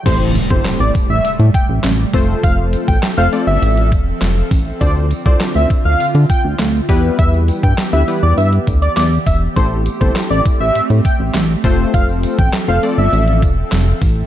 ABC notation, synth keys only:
X:1
M:4/4
L:1/16
Q:1/4=101
K:Am
V:1 name="Synth keys"
[CEGAc]2 z [CEGAc]4 z6 z [A,CFAc]2- | [A,CFAc]4 z [A,CFAc] [A,CFAd]4 z6 | [CDFAc]2 z [CDFAc]4 z6 z [G,B,EGB]2- | [G,B,EGB]4 z [G,B,EGB] [G,B,EGB]4 z6 |
[A,CEGA]2 z [A,CEGA]4 z6 z [A,CFAc]2- | [A,CFAc]4 z [A,CFAc] [A,CFAd]4 z6 |]